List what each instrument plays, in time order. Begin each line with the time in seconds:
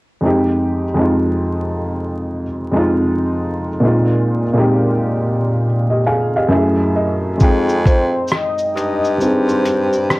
0.21 upright piano F2 G#3 C4
0.25 upright piano D#4 G4
0.94 upright piano F2 G#3 C4
0.99 upright piano D#4 F4
2.72 upright piano F2 G#3 C4
2.76 upright piano D#4 F4
3.80 upright piano A#2 G#3 C4
3.85 upright piano D#4 F4
4.54 upright piano A#2 G#3 C4
4.58 upright piano D#4 G4
5.90 upright piano G4 D#5
6.06 upright piano G#4 F5 G#5
6.36 upright piano G4 D#5 F5
6.48 upright piano F#2 A3 C#4 E5
6.53 upright piano E4 G#4
6.96 upright piano D#5
7.38 baritone saxophone F2, upright piano G#3 C4 D#4, soft synth lead G#4, kick, shaker
7.44 upright piano G5
7.69 shaker
7.86 soft synth lead C5, kick, closed hi-hat, shaker
8.28 soft synth lead D#5, cross-stick, shaker
8.58 shaker
8.76 baritone saxophone G2, soft synth lead D#5, closed hi-hat, shaker
9.05 shaker
9.18 upright piano G3 C4 D#4, soft synth lead C5, shaker
9.24 upright piano G4 G#4
9.49 shaker
9.65 closed hi-hat, shaker
9.93 shaker
10.10 cross-stick, shaker